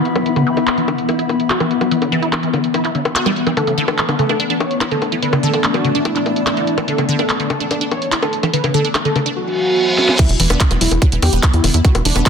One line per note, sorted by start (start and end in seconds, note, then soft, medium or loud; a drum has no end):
0.00 9.36 E3 medium
0.00 5.14 B3 medium
0.00 9.36 B3 medium
0.00 4.31 E4 medium
0.00 5.03 E5 medium
0.00 4.89 B5 medium
0.05 closed hi-hat medium
0.16 0.18 F#3 medium
0.16 closed hi-hat medium
0.16 high bongo medium
0.26 0.30 E3 medium
0.26 closed hi-hat medium
0.36 0.42 D3 medium
0.36 closed hi-hat soft
0.36 high bongo soft
0.47 0.51 E3 loud
0.57 0.61 E4 medium
0.57 closed hi-hat medium
0.57 high bongo soft
0.67 clap loud
0.67 closed hi-hat medium
0.78 0.82 E3 medium
0.78 closed hi-hat medium
0.88 0.90 D3 medium
0.88 closed hi-hat soft
0.88 high bongo medium
0.98 closed hi-hat soft
1.09 1.13 E4 medium
1.09 closed hi-hat medium
1.09 high bongo soft
1.19 1.21 E4 medium
1.19 closed hi-hat medium
1.29 closed hi-hat soft
1.29 high bongo soft
1.40 closed hi-hat soft
1.50 1.54 F#4 medium
1.50 clap loud
1.50 closed hi-hat medium
1.60 1.64 E3 medium
1.60 closed hi-hat soft
1.60 high bongo medium
1.71 closed hi-hat soft
1.81 1.83 F#3 medium
1.81 closed hi-hat medium
1.81 high bongo soft
1.91 1.95 E3 medium
1.91 closed hi-hat medium
2.02 2.08 D3 medium
2.02 closed hi-hat medium
2.02 high bongo soft
2.12 2.16 E3 loud
2.12 closed hi-hat soft
2.23 2.26 E4 medium
2.23 closed hi-hat medium
2.33 clap loud
2.33 closed hi-hat medium
2.33 high bongo medium
2.43 2.47 E3 medium
2.43 closed hi-hat soft
2.54 2.56 D3 medium
2.54 closed hi-hat soft
2.54 high bongo soft
2.64 closed hi-hat soft
2.74 2.78 E4 medium
2.74 closed hi-hat medium
2.74 high bongo soft
2.85 2.87 E4 medium
2.85 clap soft
2.85 closed hi-hat soft
2.95 2.97 D3 medium
2.95 closed hi-hat soft
3.05 closed hi-hat soft
3.05 high bongo medium
3.16 3.21 F#4 loud
3.16 clap loud
3.16 closed hi-hat medium
3.26 3.30 G3 loud
3.26 closed hi-hat soft
3.26 high bongo soft
3.36 closed hi-hat soft
3.47 3.51 E3 medium
3.47 closed hi-hat medium
3.47 high bongo soft
3.57 3.61 D3 medium
3.57 9.36 A3 medium
3.57 3.71 A4 loud
3.57 closed hi-hat medium
3.57 high bongo soft
3.67 3.73 C#3 medium
3.67 9.36 D4 medium
3.67 closed hi-hat soft
3.78 3.82 D3 loud
3.85 3.92 D4 medium
3.85 4.02 A4 medium
3.85 9.36 D5 medium
3.85 closed hi-hat soft
3.85 high bongo medium
3.98 clap loud
3.98 closed hi-hat medium
4.09 4.13 D3 medium
4.09 closed hi-hat soft
4.09 high bongo soft
4.19 4.21 C#3 medium
4.19 4.38 A4 loud
4.19 closed hi-hat soft
4.23 9.36 A5 medium
4.29 4.32 D4 medium
4.29 closed hi-hat soft
4.29 high bongo soft
4.40 4.44 D4 medium
4.40 closed hi-hat medium
4.50 4.52 D4 medium
4.50 closed hi-hat soft
4.60 4.74 C#5 medium
4.60 closed hi-hat soft
4.60 high bongo medium
4.71 closed hi-hat soft
4.81 4.85 E4 medium
4.81 clap loud
4.81 closed hi-hat medium
4.81 high bongo soft
4.91 4.95 D3 medium
4.91 5.05 A4 medium
4.91 closed hi-hat soft
5.02 closed hi-hat soft
5.02 high bongo soft
5.12 5.15 E3 medium
5.12 closed hi-hat medium
5.22 5.26 D3 medium
5.22 5.32 B4 medium
5.22 closed hi-hat medium
5.33 5.39 C#3 medium
5.33 closed hi-hat soft
5.33 high bongo medium
5.43 5.47 D3 loud
5.43 5.57 A4 loud
5.43 closed hi-hat soft
5.54 5.57 D4 medium
5.54 closed hi-hat medium
5.54 high bongo soft
5.64 clap loud
5.64 closed hi-hat medium
5.74 5.78 D3 medium
5.74 5.88 F#4 medium
5.74 closed hi-hat medium
5.74 high bongo soft
5.85 5.87 C#3 medium
5.85 closed hi-hat soft
5.95 5.97 D4 medium
5.95 closed hi-hat medium
6.05 6.09 D4 medium
6.05 6.80 E4 loud
6.05 closed hi-hat medium
6.05 high bongo medium
6.16 6.18 D4 medium
6.16 clap soft
6.16 closed hi-hat soft
6.26 closed hi-hat soft
6.26 high bongo soft
6.36 closed hi-hat soft
6.47 6.51 E4 medium
6.47 clap loud
6.47 closed hi-hat medium
6.47 high bongo soft
6.57 6.61 D3 medium
6.57 closed hi-hat soft
6.67 closed hi-hat soft
6.78 6.80 E3 medium
6.78 closed hi-hat medium
6.78 high bongo medium
6.88 6.92 D3 medium
6.88 7.02 A4 loud
6.88 closed hi-hat medium
6.98 7.04 C#3 medium
6.98 closed hi-hat medium
6.98 high bongo soft
7.09 7.13 D3 loud
7.19 7.23 D4 medium
7.19 7.33 A4 medium
7.19 closed hi-hat medium
7.19 high bongo soft
7.29 clap loud
7.29 closed hi-hat medium
7.40 7.44 D3 medium
7.40 closed hi-hat medium
7.50 7.52 C#3 medium
7.50 7.69 A4 medium
7.50 closed hi-hat soft
7.50 high bongo medium
7.60 7.63 D4 medium
7.60 closed hi-hat medium
7.71 7.75 D4 medium
7.71 closed hi-hat medium
7.71 high bongo soft
7.81 7.83 D4 medium
7.81 closed hi-hat medium
7.91 8.05 C#5 medium
7.91 closed hi-hat soft
7.91 high bongo soft
8.02 closed hi-hat medium
8.12 8.16 E4 medium
8.12 clap loud
8.12 closed hi-hat medium
8.22 8.26 D3 medium
8.22 8.36 A4 medium
8.22 closed hi-hat medium
8.22 high bongo medium
8.33 closed hi-hat medium
8.43 8.46 E3 medium
8.43 closed hi-hat medium
8.43 high bongo soft
8.53 8.57 D3 medium
8.53 8.63 B4 medium
8.53 closed hi-hat medium
8.64 8.70 C#3 medium
8.64 closed hi-hat medium
8.64 high bongo soft
8.74 8.78 D3 loud
8.74 8.88 A4 loud
8.74 closed hi-hat soft
8.85 8.88 D4 medium
8.85 closed hi-hat medium
8.95 clap loud
8.95 closed hi-hat medium
8.95 high bongo medium
9.05 9.09 D3 medium
9.05 9.19 A4 medium
9.05 closed hi-hat medium
9.16 9.18 C#3 medium
9.16 closed hi-hat soft
9.16 high bongo soft
9.26 9.28 D4 medium
9.26 closed hi-hat medium
9.36 10.11 F#4 medium
9.36 reverse cymbal medium
9.98 snare medium
10.09 snare medium
10.19 10.23 E3 medium
10.19 12.29 E3 medium
10.19 12.29 B3 medium
10.19 10.33 E4 loud
10.19 kick loud
10.19 closed hi-hat medium
10.19 crash loud
10.19 high bongo soft
10.19 impact medium
10.24 12.29 E4 medium
10.29 10.37 E1 medium
10.29 closed hi-hat medium
10.40 10.47 E1 loud
10.40 10.44 E3 loud
10.40 12.29 E5 loud
10.40 open hi-hat loud
10.46 12.29 B5 loud
10.50 10.57 E1 medium
10.50 10.52 B3 loud
10.50 10.64 D4 medium
10.50 closed hi-hat medium
10.50 high bongo medium
10.60 kick loud
10.60 clap loud
10.60 closed hi-hat medium
10.71 10.78 E1 medium
10.71 10.77 E3 medium
10.71 closed hi-hat medium
10.71 high bongo soft
10.81 10.88 E1 loud
10.81 10.85 F#3 medium
10.81 11.00 E4 loud
10.81 open hi-hat loud
10.91 10.99 E1 medium
10.91 closed hi-hat medium
10.91 high bongo soft
11.02 11.06 F#3 medium
11.02 kick loud
11.02 closed hi-hat medium
11.12 11.20 E1 medium
11.12 11.14 E3 medium
11.12 closed hi-hat medium
11.22 11.30 E2 loud
11.22 11.36 G4 loud
11.22 open hi-hat loud
11.22 high bongo medium
11.33 11.40 E1 medium
11.33 11.35 B3 loud
11.33 closed hi-hat medium
11.43 11.46 F#3 medium
11.43 kick loud
11.43 clap loud
11.43 closed hi-hat medium
11.43 high bongo soft
11.54 11.61 E2 medium
11.54 11.67 E4 medium
11.54 closed hi-hat medium
11.64 11.71 E1 loud
11.64 11.70 D3 medium
11.64 open hi-hat loud
11.64 high bongo soft
11.74 11.82 E2 medium
11.74 11.77 E4 medium
11.74 closed hi-hat medium
11.85 11.89 E3 medium
11.85 11.94 F#4 loud
11.85 kick loud
11.85 closed hi-hat medium
11.95 12.02 E1 medium
11.95 closed hi-hat medium
11.95 high bongo medium
12.05 12.13 E1 loud
12.05 12.09 E3 loud
12.05 12.19 D4 loud
12.05 open hi-hat loud
12.16 12.23 E1 loud
12.16 12.18 B3 medium
12.16 closed hi-hat medium
12.16 high bongo soft
12.26 kick loud
12.26 clap loud
12.26 closed hi-hat medium